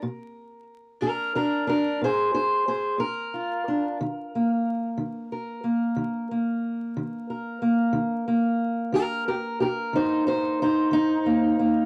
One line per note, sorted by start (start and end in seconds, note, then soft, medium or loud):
0.00 0.62 A#2 medium
0.00 1.01 A#4 soft
1.01 1.62 A#2 medium
1.01 1.34 D4 medium
1.01 1.35 A#4 medium
1.35 1.66 D4 medium
1.35 1.68 A#4 medium
1.67 2.01 D4 medium
1.67 2.02 A#4 medium
2.02 2.61 A#2 medium
2.02 2.33 G#4 medium
2.02 2.33 C5 medium
2.34 2.67 G#4 medium
2.34 2.67 C5 medium
2.68 3.01 G#4 medium
2.68 2.99 C5 medium
2.98 3.59 A#2 medium
2.98 5.31 A#4 medium
3.34 3.96 F4 soft
3.68 3.97 D4 soft
4.01 4.60 D#3 medium
4.35 5.63 A#3 soft
4.97 5.58 D#3 medium
5.32 7.30 A#4 soft
5.64 6.31 A#3 soft
5.96 6.57 D#3 medium
6.31 7.61 A#3 soft
6.97 7.56 D#3 medium
7.30 8.95 A#4 soft
7.62 8.27 A#3 soft
7.93 8.54 D#3 medium
8.28 11.26 A#3 soft
8.92 9.53 D#3 medium
8.92 9.00 G4 medium
8.92 9.27 A#4 medium
9.28 9.33 G4 medium
9.28 9.61 A#4 medium
9.60 9.66 G4 medium
9.60 9.95 A#4 medium
9.93 10.53 D#3 medium
9.93 10.26 D#4 medium
9.93 10.27 C5 medium
10.27 10.60 D#4 medium
10.27 10.60 C5 medium
10.62 10.92 D#4 medium
10.62 11.60 C5 medium
10.91 11.51 D#3 medium
10.91 11.86 D#4 loud
11.26 11.59 A#3 soft
11.59 11.86 A#3 soft